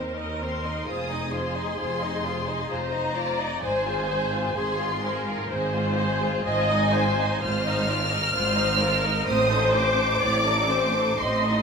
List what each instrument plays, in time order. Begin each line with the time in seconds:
Already playing: cello section D#2, double bass section D#2, violin section C4 C5, viola section A#4
0.16 violin section D#4 D#5
0.40 violin section C4 C5 C6
0.63 violin section D#4 D#5
0.86 double bass section F1, cello section F2, violin section F4 C5 D#6, viola section G#4
1.10 violin section D#4 D#5
1.32 violin section F4 C5 C6
1.56 violin section D#4 D#5
1.79 double bass section F1, cello section F2, violin section F4 C5
2.02 violin section D#4 D#5
2.24 violin section F4 C5
2.46 violin section D#4 D#5
2.69 double bass section F1, cello section F2, violin section F4 C5 A#5, viola section C5
2.92 violin section D#4 D#5
3.15 violin section F4 C5, viola section D5
3.38 violin section D#4 D#5
3.61 double bass section G#1, cello section G#2, violin section G#4 C5 G#5, viola section C5
3.85 violin section F4 G#4
4.08 violin section G#4 C5
4.32 violin section F4 G#4
4.55 double bass section G#1, cello section G#2, viola section G#4, violin section G#4 C5 C6
4.78 violin section F4 G#4
5.02 violin section G#4 C5, viola section A#4
5.25 violin section F4 G#4
5.49 double bass section G#1, cello section G#2, violin section G#4 C5, viola section C5
5.73 violin section F4 G#4
5.97 violin section G#4 C5
6.21 violin section F4 G#4
6.43 double bass section G#1, cello section G#2, violin section F4 C5 G#5, viola section D#5
6.69 violin section D#4 D#5
6.93 violin section F4 C5, viola section C5
7.18 violin section D#4 D#5
7.42 double bass section G#1, cello section G#2, violin section F4 C5 F6, viola section C5
7.66 violin section D#4 D#5
7.88 violin section F4 C5, viola section A#4
8.10 violin section D#4 D#5
8.34 double bass section G#1, cello section G#2, violin section F4 C5, viola section C5
8.56 violin section D#4 D#5
8.79 violin section F4 C5, viola section A#4
9.02 violin section D#4 D#5
9.27 double bass section A1, cello section A2, violin section C4 C5 D#6, viola section C5
9.49 violin section D#4 A4
9.73 violin section C4 C5 D6
9.97 violin section D#4 A4
10.20 double bass section A1, cello section A2, violin section C4 C5, viola section D5
10.45 violin section D#4 A4
10.68 violin section C4 C5, viola section C5
10.93 violin section D#4 A4
11.17 double bass section A1, cello section A2, violin section C4 C5 C6, viola section D#5
11.41 violin section D#4 A4